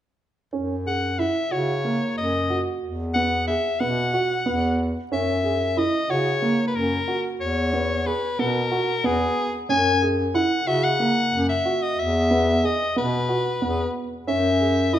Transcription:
0.53 1.30 F#2 medium
0.53 0.73 C#4 medium
0.86 1.06 G#4 soft
0.86 1.20 F#5 medium
1.19 1.39 E4 soft
1.19 1.53 E5 medium
1.51 2.02 C#3 medium
1.51 1.72 F#4 medium
1.51 2.17 C#5 medium
1.84 2.25 A#3 soft
2.17 2.67 F#2 medium
2.17 2.63 D#5 medium
2.50 2.91 F#4 soft
2.82 3.58 E2 medium
3.14 3.36 B3 soft
3.14 3.45 F#5 medium
3.47 3.69 G#4 medium
3.47 3.81 E5 medium
3.80 4.31 B2 medium
3.80 4.01 B3 medium
3.80 4.78 F#5 medium
4.13 4.34 F#4 medium
4.46 4.97 E2 medium
4.46 4.87 B3 medium
5.11 5.87 F#2 medium
5.11 5.32 C#4 medium
5.11 5.79 E5 medium
5.44 5.65 G#4 medium
5.77 5.98 E4 medium
5.77 6.12 D#5 medium
6.09 6.60 C#3 medium
6.09 6.30 F#4 medium
6.09 6.67 C#5 medium
6.42 6.83 A#3 medium
6.67 6.77 B4 soft
6.75 7.00 F#2 medium
6.75 7.24 A#4 medium
7.08 7.49 F#4 soft
7.40 8.17 E2 medium
7.40 8.08 C#5 medium
7.73 7.94 B3 medium
8.06 8.27 G#4 medium
8.06 8.41 B4 medium
8.39 8.89 B2 medium
8.39 8.59 B3 medium
8.39 9.07 A#4 medium
8.71 8.92 F#4 medium
9.04 9.29 E2 medium
9.04 9.45 B3 medium
9.04 9.54 G#4 medium
9.69 10.46 F#2 medium
9.69 9.90 C#4 medium
9.69 10.05 G#5 medium
10.02 10.23 G#4 medium
10.34 10.55 E4 medium
10.34 10.68 F#5 medium
10.67 11.18 C#3 medium
10.67 10.88 F#4 medium
10.67 10.85 E5 medium
10.84 11.48 F#5 medium
11.00 11.41 A#3 medium
11.33 11.58 F#2 medium
11.49 11.84 E5 medium
11.65 12.07 F#4 medium
11.82 12.00 D#5 medium
11.98 12.75 E2 medium
11.98 12.66 E5 medium
12.31 12.51 B3 medium
12.63 12.84 G#4 medium
12.63 12.97 D#5 medium
12.96 13.48 B2 medium
12.96 13.17 B3 medium
12.96 13.92 B4 medium
13.29 13.50 F#4 medium
13.62 13.88 E2 medium
13.62 14.03 B3 medium
14.27 14.99 F#2 medium
14.27 14.48 C#4 medium
14.27 14.95 E5 medium
14.60 14.81 G#4 medium
14.93 14.99 E4 medium
14.93 14.99 D#5 medium

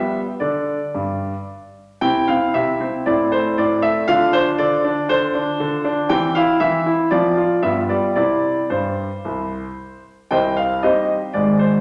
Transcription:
0.00 0.25 G3 soft
0.00 0.30 B3 soft
0.00 0.30 G4 soft
0.00 0.19 E5 medium
0.40 0.79 D3 soft
0.40 1.44 D5 medium
0.95 1.32 G2 soft
2.01 2.28 C3 soft
2.01 2.27 C4 soft
2.01 3.02 E4 soft
2.01 2.25 G5 medium
2.28 2.54 C4 soft
2.28 2.52 F5 medium
2.54 2.80 C3 soft
2.54 3.06 E5 medium
2.80 3.05 C4 soft
3.06 3.32 A2 soft
3.06 4.04 C4 soft
3.06 4.04 E4 soft
3.06 3.29 D5 medium
3.32 3.57 A3 soft
3.32 3.58 C5 medium
3.58 3.82 A2 soft
3.58 3.80 D5 medium
3.82 4.07 A3 soft
3.82 4.08 E5 medium
4.08 4.33 D3 medium
4.08 4.32 D4 soft
4.08 6.06 F4 soft
4.08 4.30 F5 medium
4.33 4.58 D4 soft
4.33 4.48 C5 medium
4.58 4.83 D3 medium
4.58 5.09 D5 medium
4.84 5.08 D4 medium
5.09 5.34 D3 medium
5.09 6.10 C5 medium
5.35 5.59 D4 soft
5.60 5.84 D3 medium
5.84 6.09 D4 medium
6.09 6.34 E3 medium
6.09 7.07 C4 soft
6.09 7.07 G4 soft
6.09 6.35 G5 medium
6.35 6.60 E4 medium
6.35 6.60 F5 medium
6.60 6.85 E3 medium
6.60 7.07 E5 medium
6.86 7.11 E4 soft
7.11 7.36 F3 medium
7.11 7.60 C4 soft
7.11 7.36 F4 soft
7.11 7.59 D5 medium
7.37 7.62 F4 soft
7.63 7.89 G2 medium
7.63 8.13 B3 soft
7.63 8.13 F4 soft
7.63 7.79 E5 medium
7.89 8.16 G3 soft
7.89 8.14 D5 medium
8.15 8.54 C3 soft
8.15 8.59 C4 soft
8.15 8.59 E4 soft
8.15 8.66 D5 medium
8.70 9.08 G2 soft
8.70 10.00 C5 soft
9.25 9.62 C2 soft
10.31 10.81 C2 soft
10.31 10.81 C3 soft
10.31 10.55 C5 soft
10.31 10.55 D#5 soft
10.31 10.54 G5 medium
10.57 10.82 F5 medium
10.83 11.20 G3 soft
10.83 11.20 C4 soft
10.83 11.20 D#4 soft
10.83 11.31 G4 soft
10.83 11.31 C5 medium
10.83 11.14 D#5 medium
11.33 11.81 G#1 soft
11.33 11.81 G#2 soft
11.33 11.59 D5 medium
11.59 11.81 C5 medium

